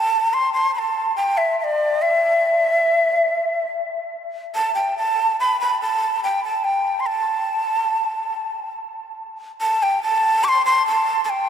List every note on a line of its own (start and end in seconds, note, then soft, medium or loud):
0.00 0.35 A5 medium
0.34 0.53 C6 medium
0.53 0.73 C6 medium
0.75 1.14 A5 medium
0.75 0.80 B5 medium
1.16 1.39 G5 medium
1.37 1.59 E5 medium
1.60 2.03 D5 medium
1.60 1.65 E5 medium
2.02 3.70 E5 medium
4.55 4.74 A5 medium
4.75 4.95 G5 medium
4.97 5.36 A5 medium
5.40 5.59 B5 medium
5.61 5.80 B5 medium
5.81 6.20 A5 medium
6.24 6.43 G5 medium
6.44 6.66 A5 medium
6.64 7.01 G5 medium
7.00 7.08 C6 medium
7.07 8.76 A5 medium
9.61 9.84 A5 medium
9.83 10.02 G5 medium
10.03 10.46 A5 loud
10.44 10.49 D6 medium
10.48 10.65 C6 medium
10.66 10.85 C6 medium
10.87 11.21 A5 medium
11.24 11.31 A5 medium
11.29 11.49 G5 medium